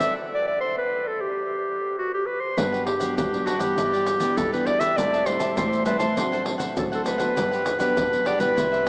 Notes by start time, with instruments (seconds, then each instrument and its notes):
Already playing: nylon-string guitar F#3 C4 E4
0.00 cavaquinho A4 C5 D5, clarinet E5, pandeiro, shaker
0.34 clarinet D5
0.47 clarinet D5
0.60 clarinet C5
0.78 clarinet B4
1.07 clarinet A4
1.21 clarinet G4
1.98 clarinet F#4
2.14 clarinet G4
2.26 clarinet B4
2.40 clarinet C5
2.57 upright bass G1, nylon-string guitar G2 F#3 B3 D4, cavaquinho D4 G4 B4 F#5, clarinet B4, pandeiro, shaker, surdo
2.72 cavaquinho G4 B4 F#5, pandeiro, shaker
2.86 clarinet G4, muted cavaquinho stroke, pandeiro
3.00 nylon-string guitar F#3 B3 D4, cavaquinho G4 B4 F#5, pandeiro, shaker
3.17 upright bass G2, nylon-string guitar D3, cavaquinho D4 G4 B4 F#5, clarinet G4, pandeiro, shaker, surdo
3.34 nylon-string guitar F#3 B3 D4, pandeiro, shaker
3.46 cavaquinho D4 G4 B4 F#5, clarinet F#4, pandeiro, shaker
3.59 upright bass G2, nylon-string guitar E3 B3 D4, clarinet G4, cavaquinho G4 B4 F#5, pandeiro, shaker
3.77 upright bass G1, nylon-string guitar G2, cavaquinho E4 G4 B4 D5, pandeiro, shaker, surdo
3.93 cavaquinho G4 B4 D5, pandeiro, shaker
4.06 muted cavaquinho stroke, pandeiro, shaker
4.19 upright bass B1, nylon-string guitar E3 B3 D4, cavaquinho G4 B4 D5, pandeiro, shaker
4.37 upright bass G1, nylon-string guitar G2, clarinet A4, pandeiro, shaker, surdo
4.52 nylon-string guitar E3 B3 D4, cavaquinho G4 B4 D5, clarinet B4, pandeiro, shaker
4.66 cavaquinho E4 G4 B4 D5, clarinet D5, pandeiro
4.80 cavaquinho G4 B4 D5, clarinet E5, pandeiro, shaker
4.97 upright bass A1, nylon-string guitar A2 G3 C4 E4, cavaquinho G4 C5 E5 A5, clarinet D5, pandeiro, shaker, surdo
5.13 cavaquinho C5 E5 A5, pandeiro, shaker
5.26 nylon-string guitar G3 C4 E4, clarinet C5, muted cavaquinho stroke, pandeiro, shaker
5.39 cavaquinho C5 E5 A5, pandeiro, shaker
5.56 upright bass A2, nylon-string guitar E3, cavaquinho G4 C5 E5 A5, clarinet C5, pandeiro, shaker, surdo
5.73 pandeiro, shaker
5.85 nylon-string guitar G3 C4 E4, cavaquinho G4 C5 E5 A5, clarinet B4, pandeiro, shaker
5.99 upright bass A2, clarinet C5, cavaquinho C5 E5 A5, pandeiro, shaker
6.16 upright bass A1, nylon-string guitar A2 F#3 C4 D4, cavaquinho D4 A4 C5 F#5, pandeiro, shaker, surdo
6.32 cavaquinho A4 C5 F#5, pandeiro, shaker
6.45 muted cavaquinho stroke, pandeiro
6.58 upright bass A1, cavaquinho A4 C5 F#5, pandeiro, shaker
6.76 upright bass D2, nylon-string guitar A2 F#3 C4 D4, clarinet A4, pandeiro, shaker, surdo
6.92 cavaquinho A4 C5 F#5, clarinet A4, pandeiro, shaker
7.04 cavaquinho D4 A4 C5 F#5, clarinet B4, pandeiro, shaker
7.18 nylon-string guitar F#3 B3 D4, cavaquinho A4 C5 F#5, clarinet B4, pandeiro, shaker
7.35 upright bass G1, nylon-string guitar G2, cavaquinho D4 G4 B4 F#5, pandeiro, shaker, surdo
7.51 cavaquinho G4 B4 F#5, pandeiro, shaker
7.65 muted cavaquinho stroke, pandeiro, shaker
7.79 nylon-string guitar F#3 B3 D4, cavaquinho G4 B4 F#5, clarinet B4, pandeiro, shaker
7.96 upright bass G2, nylon-string guitar D3, cavaquinho D4 G4 B4 F#5, pandeiro, shaker, surdo
8.12 nylon-string guitar F#3 B3 D4, pandeiro, shaker
8.25 cavaquinho D4 G4 B4 F#5, clarinet D5, pandeiro
8.39 upright bass B1, nylon-string guitar G3 B3 E4, cavaquinho G4 B4 F#5, clarinet B4, pandeiro, shaker
8.56 upright bass C2, nylon-string guitar C3, cavaquinho E4 B4 C5 E5, pandeiro, shaker, surdo
8.72 cavaquinho B4 C5 E5, pandeiro, shaker
8.85 muted cavaquinho stroke